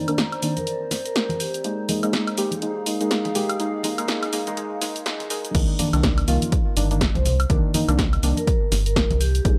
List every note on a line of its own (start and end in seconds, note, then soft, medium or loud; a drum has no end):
0.00 1.64 C4 medium
0.00 2.47 C5 medium
0.00 2.65 D5 medium
0.00 5.55 A#5 medium
0.08 0.18 D#3 medium
0.08 0.18 A#3 medium
0.08 0.18 D4 loud
0.08 closed hi-hat medium
0.08 high woodblock medium
0.08 shaker soft
0.18 snare loud
0.18 closed hi-hat medium
0.18 muted conga medium
0.18 shaker soft
0.32 closed hi-hat soft
0.32 high woodblock medium
0.42 0.57 D#3 medium
0.42 0.57 A#3 medium
0.42 0.57 D4 loud
0.42 open hi-hat loud
0.42 shaker medium
0.57 0.91 A#4 medium
0.57 closed hi-hat soft
0.57 high conga medium
0.57 shaker soft
0.67 closed hi-hat medium
0.67 shaker soft
0.91 snare soft
0.91 open hi-hat loud
0.91 muted conga medium
0.91 shaker medium
1.05 1.38 A#4 medium
1.05 closed hi-hat medium
1.05 shaker soft
1.16 snare loud
1.16 closed hi-hat medium
1.16 shaker soft
1.29 closed hi-hat soft
1.29 high conga medium
1.40 1.70 G4 medium
1.40 open hi-hat loud
1.40 shaker medium
1.54 closed hi-hat soft
1.54 shaker soft
1.64 1.86 G#3 medium
1.64 1.86 A#3 medium
1.64 5.55 D#4 medium
1.64 1.86 D#4 medium
1.64 closed hi-hat medium
1.64 shaker soft
1.89 2.00 G#3 medium
1.89 2.00 A#3 medium
1.89 2.00 D#4 medium
1.89 open hi-hat loud
1.89 high conga loud
1.89 shaker medium
2.03 2.35 G#3 medium
2.03 2.35 A#3 medium
2.03 2.35 D#4 medium
2.03 closed hi-hat soft
2.03 high woodblock medium
2.03 shaker soft
2.12 5.55 G#4 medium
2.12 snare loud
2.12 closed hi-hat medium
2.12 muted conga medium
2.12 shaker soft
2.27 closed hi-hat soft
2.27 high woodblock medium
2.38 2.60 G#3 medium
2.38 2.60 A#3 medium
2.38 2.60 G4 medium
2.38 open hi-hat loud
2.38 shaker medium
2.44 5.55 F5 medium
2.51 closed hi-hat medium
2.51 high conga medium
2.51 shaker soft
2.62 2.84 G#3 medium
2.62 2.84 A#3 medium
2.62 2.84 D#4 medium
2.62 closed hi-hat medium
2.62 shaker soft
2.86 2.97 G#3 medium
2.86 2.97 A#3 medium
2.86 2.97 D#4 medium
2.86 open hi-hat loud
2.86 shaker medium
3.01 3.33 G#3 medium
3.01 3.33 A#3 medium
3.01 3.33 D#4 loud
3.01 closed hi-hat medium
3.01 shaker soft
3.11 snare loud
3.11 closed hi-hat medium
3.11 shaker soft
3.25 closed hi-hat soft
3.25 high conga loud
3.35 3.58 G#3 medium
3.35 3.58 A#3 medium
3.35 3.58 G4 medium
3.35 open hi-hat loud
3.35 low conga medium
3.35 shaker medium
3.49 closed hi-hat medium
3.49 high woodblock medium
3.49 shaker soft
3.60 3.82 G#3 medium
3.60 3.82 A#3 medium
3.60 3.82 D#4 medium
3.60 closed hi-hat medium
3.60 shaker soft
3.83 3.95 G#3 medium
3.83 3.95 A#3 medium
3.83 3.95 D#4 medium
3.83 open hi-hat loud
3.83 high conga medium
3.83 shaker medium
3.98 4.07 G#3 medium
3.98 4.07 A#3 medium
3.98 4.07 D#4 loud
3.98 closed hi-hat medium
3.98 high woodblock medium
3.98 shaker soft
4.08 4.30 G#3 medium
4.08 4.30 A#3 medium
4.08 4.30 D#4 medium
4.08 snare loud
4.08 closed hi-hat medium
4.08 muted conga medium
4.08 shaker soft
4.23 closed hi-hat soft
4.23 high woodblock medium
4.33 4.44 G#3 medium
4.33 4.44 A#3 medium
4.33 4.44 D#4 medium
4.33 open hi-hat loud
4.33 shaker medium
4.47 4.55 G#3 medium
4.47 4.56 A#3 medium
4.47 4.56 D#4 loud
4.47 closed hi-hat medium
4.47 high conga medium
4.47 shaker soft
4.57 4.79 G#3 medium
4.57 4.79 A#3 medium
4.57 4.79 D#4 medium
4.57 closed hi-hat medium
4.57 shaker soft
4.81 5.03 G#3 medium
4.81 5.03 A#3 medium
4.81 5.03 D#4 medium
4.81 snare soft
4.81 open hi-hat loud
4.81 muted conga medium
4.81 shaker medium
4.96 closed hi-hat medium
4.96 shaker soft
5.06 5.28 G#3 medium
5.06 5.28 A#3 medium
5.06 5.28 D#4 medium
5.06 snare loud
5.06 closed hi-hat medium
5.06 shaker soft
5.20 closed hi-hat soft
5.20 high conga loud
5.30 5.52 G#3 medium
5.30 5.52 A#3 medium
5.30 5.52 D#4 medium
5.30 open hi-hat loud
5.30 shaker medium
5.45 closed hi-hat medium
5.45 shaker soft
5.55 5.65 C2 loud
5.55 5.77 D#3 medium
5.55 5.77 A#3 medium
5.55 5.77 D4 medium
5.55 kick loud
5.55 closed hi-hat medium
5.55 crash loud
5.55 shaker soft
5.79 5.90 D#3 medium
5.79 5.90 A#3 medium
5.79 5.90 D4 medium
5.79 open hi-hat loud
5.79 high conga medium
5.79 shaker medium
5.93 6.24 C2 medium
5.93 6.25 D#3 medium
5.93 6.25 A#3 medium
5.93 6.25 D4 loud
5.93 closed hi-hat medium
5.93 high woodblock medium
5.93 shaker soft
6.03 kick loud
6.03 snare loud
6.03 closed hi-hat medium
6.03 muted conga medium
6.03 shaker soft
6.18 closed hi-hat soft
6.18 high woodblock medium
6.28 6.38 C2 medium
6.28 6.74 D#3 medium
6.28 6.74 A#3 medium
6.28 6.74 F4 loud
6.28 open hi-hat medium
6.28 shaker medium
6.42 closed hi-hat medium
6.42 high conga medium
6.42 shaker soft
6.52 kick loud
6.52 closed hi-hat medium
6.52 shaker soft
6.77 7.09 G1 loud
6.77 6.87 D#3 medium
6.77 6.88 A#3 medium
6.77 6.88 D4 medium
6.77 open hi-hat loud
6.77 shaker medium
6.91 7.01 D#3 medium
6.91 7.01 A#3 medium
6.91 7.01 D4 medium
6.91 closed hi-hat medium
6.91 shaker soft
7.01 kick loud
7.01 snare loud
7.01 closed hi-hat medium
7.01 shaker soft
7.15 7.46 C2 loud
7.15 7.31 C5 medium
7.15 closed hi-hat soft
7.15 high conga medium
7.26 open hi-hat medium
7.26 low conga medium
7.26 shaker medium
7.40 closed hi-hat medium
7.40 high woodblock medium
7.40 shaker soft
7.50 7.60 C2 loud
7.50 7.72 D#3 medium
7.50 7.72 A#3 medium
7.50 7.72 D4 loud
7.50 kick loud
7.50 closed hi-hat medium
7.50 shaker soft
7.74 7.86 D#3 medium
7.74 7.86 A#3 medium
7.74 7.86 D#4 medium
7.74 open hi-hat loud
7.74 high conga loud
7.74 shaker medium
7.88 8.19 C2 medium
7.88 7.99 D#3 medium
7.88 7.99 A#3 medium
7.88 7.99 D4 loud
7.88 closed hi-hat medium
7.88 high woodblock medium
7.88 shaker soft
7.98 kick loud
7.98 snare loud
7.98 closed hi-hat medium
7.98 muted conga medium
7.98 shaker soft
8.13 closed hi-hat soft
8.13 high woodblock medium
8.23 8.33 C2 medium
8.23 8.37 D#3 medium
8.23 8.37 A#3 medium
8.23 8.37 D4 loud
8.23 open hi-hat loud
8.23 shaker medium
8.37 8.72 A#4 medium
8.37 closed hi-hat medium
8.37 high conga medium
8.37 shaker soft
8.47 kick loud
8.47 closed hi-hat medium
8.47 shaker soft
8.72 9.04 G1 loud
8.72 snare soft
8.72 open hi-hat loud
8.72 muted conga medium
8.72 shaker medium
8.86 9.19 A#4 medium
8.86 closed hi-hat medium
8.86 shaker soft
8.96 kick loud
8.96 snare loud
8.96 closed hi-hat medium
8.96 shaker soft
9.10 9.41 C2 loud
9.10 closed hi-hat soft
9.10 high conga medium
9.21 9.51 G4 medium
9.21 open hi-hat medium
9.21 shaker medium
9.35 closed hi-hat medium
9.35 shaker soft
9.45 9.55 A#1 loud
9.45 9.59 G#3 medium
9.45 9.59 A#3 medium
9.45 9.59 D#4 medium
9.45 kick loud
9.45 closed hi-hat medium
9.45 shaker soft